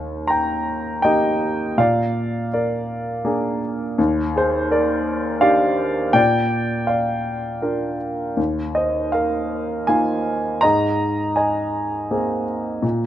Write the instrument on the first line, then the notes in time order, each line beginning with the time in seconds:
grand piano
Already playing: D#2
0.27 G5 A#5
1.02 A#3 D#4 G4 D#5 G5
1.78 A#2 D5 F5
2.54 A#4 D5
3.25 A#3 D4 G#4
3.98 D#2
4.36 G#4 C5
4.71 A#4 D5
5.41 D4 D#4 G4 D5 F5
6.13 A#2 D5 G5
6.87 D5 F5
7.62 D4 F4 A#4
8.37 D#2
8.75 C5 D#5
9.12 A#4 F5
9.87 A#3 D#4 F4 F5 G#5
10.61 G#2 D#5 A#5
11.36 D#5 G#5
12.11 A#3 C4 G#4
12.82 A#2